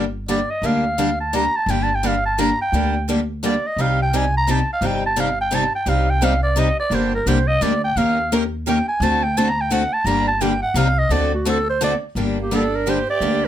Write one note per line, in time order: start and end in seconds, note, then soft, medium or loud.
0.00 0.41 G1 medium
0.28 0.39 D3 medium
0.28 0.39 G3 medium
0.28 0.39 A#3 medium
0.28 0.39 D4 medium
0.28 0.39 G4 medium
0.28 0.52 D5 medium
0.51 0.67 D#5 medium
0.62 1.46 D2 medium
0.62 0.83 D3 medium
0.62 0.83 G3 medium
0.62 0.83 A#3 medium
0.62 0.84 D4 medium
0.62 0.84 G4 medium
0.66 1.20 F5 medium
0.98 1.09 D3 medium
0.98 1.09 G3 medium
0.98 1.09 A#3 medium
0.98 1.09 D4 medium
0.98 1.09 G4 medium
1.21 1.37 A5 medium
1.33 1.44 D3 medium
1.33 1.44 G3 medium
1.33 1.44 A#3 medium
1.33 1.44 D4 medium
1.33 1.44 G4 medium
1.33 1.58 A#5 loud
1.57 1.72 A5 medium
1.66 2.51 G1 medium
1.66 1.88 D3 medium
1.66 1.88 G3 medium
1.66 1.89 A#3 medium
1.66 1.89 D4 medium
1.66 1.89 G4 medium
1.71 1.85 G5 medium
1.83 1.97 A5 loud
1.95 2.08 G5 medium
2.03 2.14 D3 medium
2.03 2.14 G3 medium
2.03 2.14 A#3 medium
2.03 2.14 D4 medium
2.03 2.14 G4 medium
2.03 2.25 F5 medium
2.26 2.41 A5 loud
2.38 2.49 D3 medium
2.38 2.49 G3 medium
2.38 2.49 A#3 medium
2.38 2.49 D4 medium
2.38 2.49 G4 loud
2.38 2.60 A#5 loud
2.61 3.06 G5 loud
2.72 3.56 D2 medium
2.72 2.94 D3 medium
2.72 2.94 G3 medium
2.72 2.94 A#3 medium
2.72 2.94 D4 medium
2.72 2.94 G4 medium
3.09 3.19 D3 medium
3.09 3.19 G3 medium
3.09 3.19 A#3 medium
3.09 3.19 D4 medium
3.09 3.19 G4 medium
3.43 3.53 D3 medium
3.43 3.54 G3 medium
3.43 3.54 A#3 medium
3.43 3.54 D4 medium
3.43 3.54 G4 medium
3.43 3.68 D5 medium
3.67 3.82 D#5 medium
3.77 4.61 C2 medium
3.77 3.98 C3 medium
3.77 3.98 G3 medium
3.77 3.99 C4 medium
3.77 3.99 D#4 medium
3.77 3.99 G4 medium
3.81 4.00 F5 medium
4.02 4.18 G5 medium
4.13 4.24 C3 medium
4.13 4.24 G3 medium
4.13 4.24 C4 medium
4.13 4.24 D#4 medium
4.13 4.24 G4 medium
4.13 4.35 G#5 medium
4.37 4.53 A#5 loud
4.47 4.58 C3 medium
4.47 4.59 G3 medium
4.47 4.59 C4 medium
4.47 4.59 D#4 medium
4.47 4.59 G4 medium
4.51 4.70 A5 medium
4.73 4.87 F5 medium
4.81 5.65 G1 medium
4.81 5.02 C3 medium
4.81 5.02 G3 medium
4.81 5.03 C4 medium
4.81 5.03 D#4 medium
4.81 5.03 G4 medium
4.86 5.05 G5 medium
5.06 5.22 A5 loud
5.16 5.27 C3 medium
5.16 5.28 G3 medium
5.16 5.28 C4 medium
5.16 5.28 D#4 medium
5.16 5.28 G4 medium
5.16 5.40 F5 medium
5.41 5.56 G5 loud
5.51 5.62 C3 medium
5.51 5.62 G3 medium
5.51 5.63 C4 medium
5.51 5.63 D#4 loud
5.51 5.63 G4 medium
5.55 5.74 A5 loud
5.75 5.91 G5 medium
5.86 6.70 C2 medium
5.86 6.07 C3 medium
5.86 6.07 G3 medium
5.86 6.07 C4 medium
5.86 6.07 D#4 medium
5.86 6.07 G4 medium
5.86 6.12 F5 medium
6.10 6.26 G5 loud
6.22 6.32 C3 medium
6.22 6.33 G3 medium
6.22 6.33 C4 medium
6.22 6.33 D#4 medium
6.22 6.33 G4 medium
6.22 6.42 F5 medium
6.43 6.61 D5 medium
6.56 6.67 C3 medium
6.56 6.67 G3 medium
6.56 6.67 C4 medium
6.56 6.67 D#4 medium
6.56 6.68 G4 medium
6.56 6.79 D#5 medium
6.80 6.96 D5 medium
6.90 7.19 G1 medium
6.90 7.12 D3 medium
6.90 7.12 G3 medium
6.90 7.12 A#3 medium
6.90 7.12 D4 medium
6.90 7.12 G4 medium
6.95 7.14 C5 medium
7.15 7.30 A#4 medium
7.26 7.56 C2 medium
7.26 7.37 D3 medium
7.26 7.38 G3 medium
7.26 7.37 A#3 medium
7.26 7.38 D4 medium
7.26 7.38 G4 medium
7.26 7.49 C5 medium
7.48 7.64 D#5 loud
7.61 7.91 D2 medium
7.61 7.72 D3 medium
7.61 7.72 G3 medium
7.61 7.72 A#3 medium
7.61 7.73 D4 medium
7.61 7.73 G4 medium
7.61 7.83 D5 medium
7.84 7.99 G5 loud
7.96 8.80 D#2 medium
7.96 8.17 D#3 medium
7.96 8.17 A#3 medium
7.96 8.17 C#4 medium
7.96 8.17 G4 medium
7.96 8.17 A#4 medium
7.96 8.32 F5 medium
8.32 8.42 D#3 medium
8.32 8.42 A#3 medium
8.32 8.43 C#4 medium
8.32 8.43 G4 medium
8.32 8.43 A#4 medium
8.67 8.77 D#3 medium
8.67 8.77 A#3 medium
8.67 8.78 C#4 medium
8.67 8.78 G4 medium
8.67 8.78 A#4 medium
8.67 8.87 G5 medium
8.88 9.04 G#5 medium
9.00 9.84 D2 medium
9.00 9.22 D3 medium
9.00 9.22 A3 medium
9.00 9.22 C4 medium
9.00 9.22 F#4 medium
9.00 9.22 A4 medium
9.00 9.24 A5 loud
9.23 9.39 G5 loud
9.37 9.47 D3 medium
9.37 9.47 A3 medium
9.37 9.47 C4 medium
9.37 9.48 F#4 medium
9.37 9.48 A4 loud
9.37 9.50 A5 loud
9.49 9.62 A#5 loud
9.61 9.73 G5 medium
9.71 9.81 D3 medium
9.71 9.82 A3 medium
9.71 9.82 C4 medium
9.71 9.82 F#4 medium
9.71 9.82 A4 medium
9.71 9.95 F#5 medium
9.93 10.08 A5 loud
10.05 10.61 G1 medium
10.05 10.27 D3 medium
10.05 10.27 G3 medium
10.05 10.27 A#3 medium
10.05 10.27 D4 medium
10.05 10.27 G4 medium
10.05 10.27 A#5 loud
10.28 10.43 A5 loud
10.41 10.52 D3 medium
10.41 10.52 G3 medium
10.41 10.52 A#3 medium
10.41 10.52 D4 medium
10.41 10.52 G4 medium
10.41 10.62 G5 medium
10.62 10.79 F#5 loud
10.74 11.03 C2 medium
10.74 10.86 C3 medium
10.74 10.87 G3 medium
10.74 10.87 C4 medium
10.74 10.87 D#4 loud
10.74 10.87 G4 medium
10.74 11.00 F5 medium
10.98 11.14 D#5 medium
11.09 11.94 D2 medium
11.09 11.31 D3 medium
11.09 11.31 A3 medium
11.09 11.31 C4 medium
11.09 11.31 F#4 medium
11.09 11.31 A4 medium
11.09 11.33 D5 medium
11.34 11.50 F#4 medium
11.45 11.56 D3 medium
11.45 11.57 A3 medium
11.45 11.57 C4 medium
11.45 11.57 F#4 medium
11.45 11.57 A4 medium
11.45 11.68 A4 medium
11.69 11.81 C5 medium
11.81 11.92 D3 medium
11.81 11.92 A3 medium
11.81 11.92 C4 medium
11.81 11.92 F#4 medium
11.81 11.92 A4 medium
11.81 11.96 D5 medium
12.15 13.00 G1 medium
12.15 12.36 D3 medium
12.15 12.37 G3 medium
12.15 12.37 A#3 medium
12.15 12.37 D4 medium
12.15 12.37 G4 medium
12.39 12.54 A#3 medium
12.39 12.56 G4 medium
12.51 12.62 D3 medium
12.51 12.62 G3 medium
12.51 12.62 A#3 medium
12.51 12.62 D4 medium
12.51 12.74 D4 medium
12.51 12.63 G4 medium
12.51 12.77 A4 medium
12.74 12.90 D4 medium
12.74 12.91 A#4 medium
12.87 12.97 D3 medium
12.87 12.97 G3 medium
12.87 12.98 A#3 medium
12.87 12.98 D4 medium
12.87 12.98 G4 medium
12.87 13.08 G4 medium
12.87 13.09 C5 medium
13.10 13.46 G4 medium
13.10 13.46 D5 loud
13.21 13.48 D2 medium
13.21 13.42 D3 medium
13.21 13.42 G3 medium
13.21 13.42 A#3 medium
13.21 13.42 D4 medium
13.21 13.42 G4 medium
13.44 13.48 D4 medium